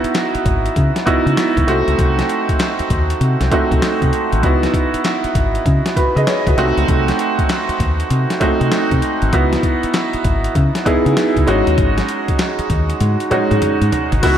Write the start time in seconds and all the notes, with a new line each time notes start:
Already playing: B3 D#4 E4 F#4
0.04 muted fingered electric bass stroke, closed hi-hat
0.14 snare, clap, closed hi-hat
0.35 muted fingered electric bass stroke, closed hi-hat
0.45 G#1, kick, closed hi-hat
0.66 closed hi-hat
0.76 C#3, kick, closed hi-hat
0.96 snare, closed hi-hat
1.06 B3 D#4 E4 F#4, muted fingered electric bass stroke, kick, closed hi-hat
1.26 C#3, closed hi-hat
1.37 snare, clap, closed hi-hat
1.57 C#2, kick, closed hi-hat
1.67 C2 A3 C4 D#4 F#4, closed hi-hat
1.88 C#2, closed hi-hat
1.99 C2, kick, closed hi-hat
2.19 snare, closed hi-hat
2.29 closed hi-hat
2.49 muted fingered electric bass stroke, kick, closed hi-hat
2.59 snare, clap, closed hi-hat
2.79 muted fingered electric bass stroke, closed hi-hat
2.90 D#2, kick, closed hi-hat
3.10 closed hi-hat
3.21 C3, closed hi-hat
3.41 C2, snare, closed hi-hat
3.51 A3 C4 D#4 F#4, kick, closed hi-hat
3.71 C2, kick, closed hi-hat
3.82 snare, clap, closed hi-hat
4.02 C3, kick, closed hi-hat
4.13 closed hi-hat
4.32 G#1, closed hi-hat
4.43 C#2 B3 D#4 E4 F#4, kick, closed hi-hat
4.63 snare, closed hi-hat
4.74 kick, closed hi-hat
4.94 muted fingered electric bass stroke, closed hi-hat
5.04 snare, clap, closed hi-hat
5.24 muted fingered electric bass stroke, closed hi-hat
5.35 G#1, kick, closed hi-hat
5.55 closed hi-hat
5.66 C#3, kick, closed hi-hat
5.86 snare, closed hi-hat
5.96 F#4 B4, muted fingered electric bass stroke, kick, closed hi-hat
6.16 C#3 G#4 D#5, closed hi-hat
6.27 G#4 C#5, snare, clap, closed hi-hat
6.47 C#2 F#4 B4, kick, closed hi-hat
6.57 C2 A3 C4 D#4 F#4, closed hi-hat
6.77 C#2, closed hi-hat
6.88 C2, kick, closed hi-hat
7.08 snare, closed hi-hat
7.19 closed hi-hat
7.39 muted fingered electric bass stroke, kick, closed hi-hat
7.49 snare, clap, closed hi-hat
7.69 muted fingered electric bass stroke, closed hi-hat
7.80 D#2, kick, closed hi-hat
8.00 closed hi-hat
8.10 C3, closed hi-hat
8.30 snare, closed hi-hat
8.40 A3 C4 D#4 F#4, muted fingered electric bass stroke, kick, closed hi-hat
8.61 C3, closed hi-hat
8.72 snare, clap, closed hi-hat
8.91 C3, kick, closed hi-hat
9.02 closed hi-hat
9.22 G#1, closed hi-hat
9.33 C#2 B3 D#4 E4 F#4, kick, closed hi-hat
9.53 snare, closed hi-hat
9.63 kick, closed hi-hat
9.83 muted fingered electric bass stroke, closed hi-hat
9.94 snare, clap, closed hi-hat
10.13 muted fingered electric bass stroke, closed hi-hat
10.24 G#1, kick, closed hi-hat
10.44 closed hi-hat
10.55 C#3, kick, closed hi-hat
10.75 snare, closed hi-hat
10.85 B3 D#4 E4 G#4, muted fingered electric bass stroke, kick, closed hi-hat
11.06 C#3, closed hi-hat
11.17 snare, clap, closed hi-hat
11.36 C#2, kick, closed hi-hat
11.47 G#1 G#3 C#4 D#4 F#4, closed hi-hat
11.67 D#2, closed hi-hat
11.78 G#1, kick, closed hi-hat
11.98 snare, closed hi-hat
12.09 closed hi-hat
12.28 muted fingered electric bass stroke, kick, closed hi-hat
12.39 snare, clap, closed hi-hat
12.59 muted fingered electric bass stroke, closed hi-hat
12.70 D#2, kick, closed hi-hat
12.90 closed hi-hat
13.00 G#2, closed hi-hat, high tom
13.20 closed hi-hat
13.31 G#3 C#4 D#4 F#4, muted fingered electric bass stroke, closed hi-hat, mid tom
13.51 G#2, closed hi-hat, mid tom
13.62 closed hi-hat, mid tom
13.81 G#2, closed hi-hat
13.92 closed hi-hat, floor tom
14.12 G#1, closed hi-hat, floor tom
14.23 C#2 E3 B3 C#4 D#4 E4 F#4, kick, closed hi-hat, crash, tambourine